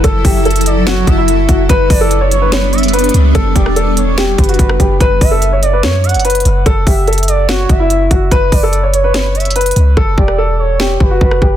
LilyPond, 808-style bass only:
\new Staff \with { instrumentName = "808-style bass" } { \clef bass \time 4/4 \key fis \phrygian \tempo 4 = 145 fis,,8 fis,,2 fis,,4 fis,,8 | fis,,8 fis,,2. cis,8 | r8 e,,2 fis,,8 fis,,8 fis,,8 | fis,,8 fis,,4. fis,8. fis,,8. fis,,8 |
fis,,8 fis,,2 fis,,4 fis,,8 | fis,,8 fis,,2. cis,8 | fis,,8 e,,2 fis,,8 fis,,8 fis,,8 | }